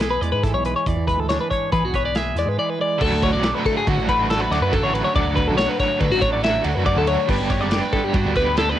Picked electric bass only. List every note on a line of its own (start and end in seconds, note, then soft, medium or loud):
0.00 0.17 B1 medium
0.22 0.31 E2 medium
0.33 0.52 G#2 medium
0.54 0.73 B1 loud
0.87 0.96 E2 medium
0.96 1.17 E2 medium
1.17 1.37 D2 medium
1.72 1.82 E3 medium
1.82 2.32 B1 medium
2.35 2.45 E2 medium
2.46 2.56 G#2 medium
3.01 3.10 D2 loud
3.11 3.33 D2 loud
3.32 3.52 B1 medium
3.87 3.97 D3 medium
3.97 4.46 A1 medium
4.50 4.60 D2 medium
4.61 4.81 F#2 medium
4.82 5.02 A1 loud
5.15 5.25 D2 loud
5.26 5.49 D2 medium
5.47 5.66 B1 medium
6.01 6.09 D3 medium
6.10 6.60 A1 medium
6.65 6.74 D2 medium
6.76 6.95 F#2 medium
6.96 7.16 D2 loud
7.29 7.38 G1 loud
7.40 7.60 G1 loud
7.60 7.80 F#1 medium
8.14 8.24 G2 loud
8.25 8.74 D2 medium